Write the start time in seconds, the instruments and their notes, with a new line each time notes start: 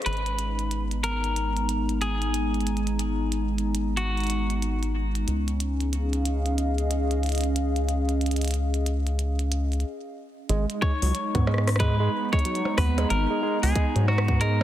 Already playing: analog synth pad C#4 G#4 D#5 F5
0.02 closed hi-hat
0.06 analog synth bass G#1, analog synth pad G#3, clean electric guitar B4, closed hi-hat
0.13 closed hi-hat
0.17 closed hi-hat
0.26 analog synth pad D#4, closed hi-hat
0.37 analog synth pad B3, closed hi-hat
0.59 analog synth pad A#5, closed hi-hat
0.71 closed hi-hat
0.91 closed hi-hat
1.04 clean electric guitar A#4, closed hi-hat
1.24 closed hi-hat
1.36 closed hi-hat
1.57 closed hi-hat
1.69 closed hi-hat
1.89 closed hi-hat
2.02 clean electric guitar G#4, closed hi-hat
2.22 closed hi-hat
2.34 closed hi-hat
2.54 closed hi-hat
2.61 closed hi-hat
2.67 closed hi-hat
2.77 closed hi-hat
2.87 closed hi-hat
2.99 closed hi-hat
3.32 closed hi-hat
3.58 closed hi-hat
3.75 closed hi-hat
3.97 clean electric guitar F#4, closed hi-hat
4.17 closed hi-hat
4.20 closed hi-hat
4.24 closed hi-hat
4.27 closed hi-hat
4.30 closed hi-hat
4.50 closed hi-hat
4.62 closed hi-hat
4.83 closed hi-hat
5.15 closed hi-hat
5.28 analog synth bass C#2, analog synth pad C#4, closed hi-hat
5.48 closed hi-hat
5.60 closed hi-hat
5.74 analog synth pad G#4
5.80 closed hi-hat
5.89 analog synth pad F5
5.93 closed hi-hat
6.04 analog synth pad D#5
6.13 closed hi-hat
6.25 closed hi-hat
6.46 closed hi-hat
6.58 closed hi-hat
6.78 closed hi-hat
6.91 closed hi-hat
7.11 closed hi-hat
7.23 closed hi-hat
7.26 closed hi-hat
7.29 closed hi-hat
7.32 closed hi-hat
7.35 closed hi-hat
7.38 closed hi-hat
7.41 closed hi-hat
7.44 closed hi-hat
7.56 closed hi-hat
7.76 closed hi-hat
7.89 closed hi-hat
8.09 closed hi-hat
8.21 closed hi-hat
8.26 closed hi-hat
8.31 closed hi-hat
8.36 closed hi-hat
8.41 closed hi-hat
8.45 closed hi-hat
8.48 closed hi-hat
8.51 closed hi-hat
8.54 closed hi-hat
8.74 closed hi-hat
8.86 closed hi-hat
9.07 closed hi-hat
9.19 closed hi-hat
9.39 closed hi-hat
9.52 closed hi-hat
9.72 closed hi-hat
9.80 closed hi-hat
10.49 analog synth bass G#1, tine electric piano G#3, analog synth pad G#3, closed hi-hat
10.67 analog synth pad D#4, closed hi-hat
10.82 tine electric piano G#3, clean electric guitar C#5, kick
11.02 analog synth bass C#2, tine electric piano F#3, open hi-hat
11.15 closed hi-hat
11.26 analog synth pad B3
11.35 analog synth bass G#2, tine electric piano B3, kick, closed hi-hat
11.47 tine electric piano G#3, cross-stick, percussion blips
11.54 cross-stick
11.58 cross-stick
11.67 cross-stick, open hi-hat
11.69 cross-stick
11.76 cross-stick
11.80 tine electric piano G#3, clean electric guitar B4, kick, closed hi-hat
11.99 tine electric piano G#3, analog synth pad A#5
12.33 tine electric piano G#3, clean electric guitar C#5, kick, closed hi-hat
12.39 closed hi-hat
12.45 tine electric piano F#3, closed hi-hat
12.55 closed hi-hat
12.65 percussion blips
12.78 analog synth bass D#2, tine electric piano B3, clean electric guitar B4, kick, cross-stick, open hi-hat
12.98 tine electric piano G#3, closed hi-hat, percussion blips
13.10 analog synth bass G#1, clean electric guitar A#4, closed hi-hat
13.30 tine electric piano G#3
13.43 tine electric piano G#3
13.63 analog synth bass C#2, clean electric guitar G#4, open hi-hat
13.76 tine electric piano G#3, kick, closed hi-hat
13.96 analog synth bass G#2, tine electric piano F#3, closed hi-hat
14.08 clean electric guitar F#4, percussion blips
14.18 cross-stick
14.28 tine electric piano B3, kick
14.41 tine electric piano G#3, clean electric guitar A#4, closed hi-hat